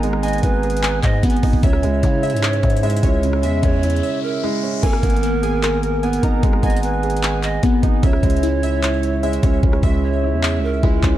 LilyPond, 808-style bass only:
\new Staff \with { instrumentName = "808-style bass" } { \clef bass \time 4/4 \key gis \minor \tempo 4 = 150 gis,,4 gis,,4. gis,8 gis,,8 gis,,8 | cis,8 cis,8 cis8. gis,8. gis,4 cis,8~ | cis,8 e,8 e,4 r2 | gis,,8 gis,,2. gis,,8 |
gis,,8 gis,,2~ gis,,8 gis,,8 gis,,8 | cis,8 cis,2. cis,8 | cis,8 cis,4~ cis,16 e,8~ e,32 cis,8~ cis,32 cis,8 cis,8 | }